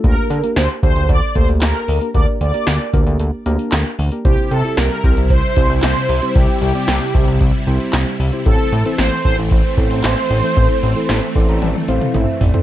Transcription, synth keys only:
\new Staff \with { instrumentName = "Synth keys" } { \time 4/4 \key g \dorian \tempo 4 = 114 << { r1 | r1 | r1 | r1 |
r1 | r4. c'''16 bes''16 a''8 f''8 e''8 d''8 | } \\ { <bes d' g' bes'>8 r16 <bes d' g' bes'>8 r16 <bes d' g' a'>8 r8 <bes d' g' a'>8. r8 <bes d' g' bes'>16 | <bes d' g' bes'>8 r16 <bes d' g' bes'>8 r16 <bes d' g' bes'>8 r8 <bes d' g' bes'>8. r8 <bes d' g' bes'>16 | <c' e' g' c''>8 r16 <c' e' g' a'>8 r16 <c' e' g' c''>8 r8 <c' e' g' c''>8. r8 <c' e' g' c''>16 | <c' e' g' c''>8 r16 <c' e' g' d''>8 r16 <c' e' g' c''>8 r8 <c' e' g' c''>8. r8 <c' e' g' c''>16 |
<c' e' a' c''>8 r16 <c' e' a' c''>8 r16 <c' e' a' c''>8 r8 <c' e' a' c''>8. r8 <c' e' a' c''>16 | <c' e' a' c''>8 r16 <c' e' a' c''>8 r16 <c' e' a' d''>8 r8 <c' e' a' c''>8. r8 <c' e' a' c''>16 | } >> }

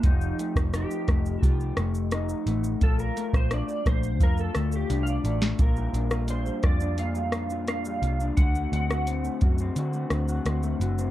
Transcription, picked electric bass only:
\new Staff \with { instrumentName = "Picked electric bass" } { \clef bass \time 4/4 \key bes \major \tempo 4 = 86 f,,8 r16 f,,8 r16 f,,8 c,8 f,,4 a,,8 | bes,,8 r16 bes,,8 r16 bes,,8 f,8 d,8 c,8 a,,8 | bes,,8 bes,,4 f,2 c,8 | d,8 d,4 fis,8 d8 d,8 d,8 fis,,8 | }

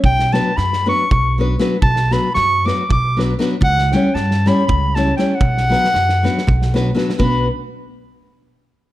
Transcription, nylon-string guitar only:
\new Staff \with { instrumentName = "Nylon-string guitar" } { \time 7/8 \key b \minor \tempo 4 = 118 r8 <fis b d' fis' b'>8 r8 <fis b d' fis' b'>8 r8 <fis b d' fis' b'>8 <fis b d' fis' b'>8 | r8 <fis b d' fis' b'>8 r8 <fis b d' fis' b'>8 r8 <fis b d' fis' b'>8 <fis b d' fis' b'>8 | r8 <g cis' e' g' cis''>8 r8 <g cis' e' g' cis''>8 r8 <g cis' e' g' cis''>8 <g cis' e' g' cis''>8 | r8 <fis b d' fis' b'>8 r8 <fis b d' fis' b'>8 r8 <fis b d' fis' b'>8 <fis b d' fis' b'>8 |
<b d' fis' b'>8 r2. | }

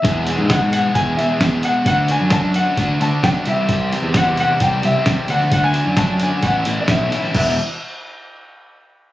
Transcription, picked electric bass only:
\new Staff \with { instrumentName = "Picked electric bass" } { \clef bass \time 4/4 \key e \mixolydian \tempo 4 = 131 e,8. gis,8 gis,8 r16 e,8 e,16 r16 e,8 r8 | d,8. fis,8 fis,8 r16 d,8 d,16 r16 b,,16 r16 c,8~ | c,8. e,8 e,8 r16 c,8 c,16 r16 c,16 r16 d,8~ | d,8. fis,8 fis,8 r16 a,,8 a,,16 r16 b,,8 r8 |
e,,8 r2. r8 | }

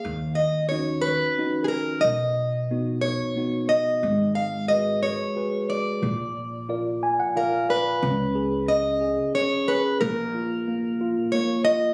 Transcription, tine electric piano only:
\new Staff \with { instrumentName = "Tine electric piano" } { \time 3/4 \key des \mixolydian \tempo 4 = 90 << { r2. | r2. | r2. | r4. aes''16 ges''16 f''8 d''8 |
r2. | r2. | } \\ { ees4 <des' ees' ges'>4 <des' ees' ges'>4 | b,4 <b dis' fis'>4 <b dis' fis'>4 | aes4 <ges' aes' ces''>4 <ges' aes' ces''>4 | bes,4 <f' bes' d''>4 <f' d''>4 |
des'8 aes'8 des'8 aes'8 des'8 aes'8 | bes8 f'8 bes8 f'8 bes8 f'8 | } >> }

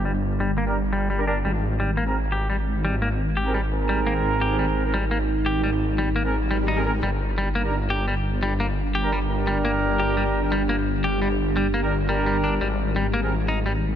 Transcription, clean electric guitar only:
\new Staff \with { instrumentName = "Clean electric guitar" } { \clef bass \time 4/4 \key g \phrygian \tempo 4 = 172 g8 r8 g8 bes8 r8 g8 g8 d'8 | g8 r8 g8 bes8 r8 g'8 g8 r8 | g8 bes8 r8 g'8 g8 r8 g8 bes8 | r8 g'8 g8 r8 g8 bes8 r8 g'8 |
g8 r8 g8 bes8 r8 g8 ees'8 r8 | g8 r8 g8 bes8 r8 g'8 g8 r8 | g8 bes8 r8 g'8 g8 r8 g8 bes8 | r8 g'8 g8 r8 g8 bes8 r8 g'8 |
g8 r8 g8 bes8 r8 g8 g8 d'8 | g8 r8 g8 bes8 r8 ees'8 g8 r8 | }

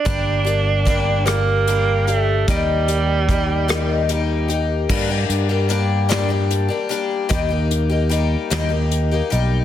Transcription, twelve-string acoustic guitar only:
\new Staff \with { instrumentName = "Twelve-string acoustic guitar" } { \time 6/8 \key g \minor \tempo 4. = 50 <g bes d' g'>8 <bes d' g'>8 <g bes d' g'>8 <g bes d' g'>8 <g bes d' g'>8 <d' g'>8 | <ees g bes ees' g'>8 <bes ees' g'>8 <g bes ees' g'>8 <ees g bes ees' g'>8 <g bes ees' g'>8 <bes ees' g'>8 | <g, d g bes d' g'>16 <g bes d' g'>8 <g bes d' g'>16 <g bes d' g'>8 <g, d g bes d' g'>16 <g bes d' g'>8 <g bes d' g'>16 <g bes d' g'>8 | <ees g bes ees' g'>16 <bes ees' g'>8 <bes ees' g'>16 <g bes ees' g'>8 <ees g bes ees' g'>16 <bes ees' g'>8 <bes ees' g'>16 <g bes ees' g'>8 | }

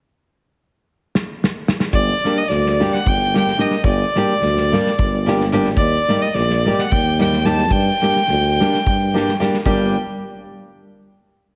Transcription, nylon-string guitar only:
\new Staff \with { instrumentName = "Nylon-string guitar" } { \time 7/8 \key g \minor \tempo 4 = 109 r2. r8 | r8 <g bes d' g'>8 r8 <g bes d' g'>8 r8 <g bes d' g'>8 <g bes d' g'>8 | r8 <g bes d' g'>8 r8 <g bes d' g'>8 r8 <g bes d' g'>8 <g bes d' g'>8 | r8 <g bes ees' g'>8 r8 <g bes ees' g'>8 r8 <g bes ees' g'>8 <g bes ees' g'>8 |
r8 <g bes d' g'>8 r8 <g bes d' g'>8 r8 <g bes d' g'>8 <g bes d' g'>8 | <g bes d' g'>8 r2. | }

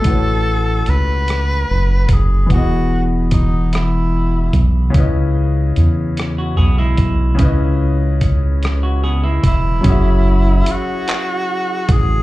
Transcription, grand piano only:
\new Staff \with { instrumentName = "Grand piano" } { \time 6/8 \key fis \dorian \tempo 4. = 49 <a e' fis' b' cis''>2. | <e b fis' gis' dis''>2. | <cis cis' e' b' dis''>2. | <cis cis' e' b' dis''>2. |
<fis cis' fis' gis' e''>2. | }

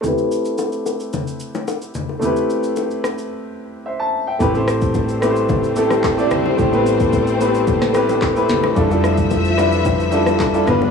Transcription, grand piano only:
\new Staff \with { instrumentName = "Grand piano" } { \time 4/4 \key a \minor \tempo 4 = 110 << { r1 | r2. <c'' e''>16 a''8 <e'' g''>16~ | <e'' g''>16 r2. r8. | r1 |
r1 | } \\ { <a c' e' g' b'>1 | <a c' e' g' b'>1 | <a c' e' g' b'>16 <a c' e' g' c''>4 r16 <a c' e' g' b' c''>8. r16 <a c' e' g' a'>8 r16 <a c' e' g' d''>8 r16 | <a c' e' g' c''>16 <a b c' e' g' b'>4 r16 <a b c' e' g' b'>8. r16 <a c' e' g' b'>8 r16 <a c' e' g' b'>8 r16 |
<g d' e' f' a'>16 <g d' e' f' a'>4 r16 <g d' e' f' b'>8. r16 <g d' e' f' a'>8 r16 <g d' e' f' a'>16 <g b d' f' b'>8 | } >> }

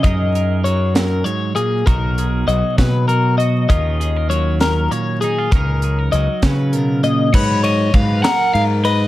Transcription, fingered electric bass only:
\new Staff \with { instrumentName = "Fingered electric bass" } { \clef bass \time 6/8 \key fis \major \tempo 4. = 66 fis,2 r4 | b,,4 b,,16 r16 b,4. | dis,2 r4 | cis,4 cis,16 r16 cis4. |
gis,4 gis,8 r8 gis,4 | }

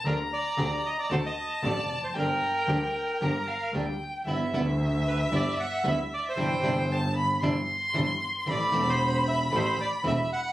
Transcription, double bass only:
\new Staff \with { instrumentName = "Double bass" } { \clef bass \time 4/4 \key g \minor \tempo 4 = 114 d,8 r8 d,8 r8 d,8 r8 a,,8 f,,8 | g,,8 r8 d,8 r8 g,,8 r8 d,8 r8 | \key g \major g,,8 d,4. g,,8 r8 d,8 r8 | g,,8 g,,4. g,,8 r8 g,,8 r8 |
a,,8 e,,4. a,,8 r8 e,,8 r8 | }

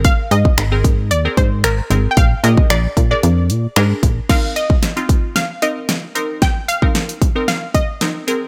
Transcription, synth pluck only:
\new Staff \with { instrumentName = "Synth pluck" } { \time 4/4 \key c \minor \tempo 4 = 113 f''8 ees''4. d''8 c''8 bes'8. r32 g''32 | f''8 ees''8 d''8. d''4.~ d''16 r8 | f''8 ees''4. f''8 ees''4. | g''8 f''4. f''8 ees''4. | }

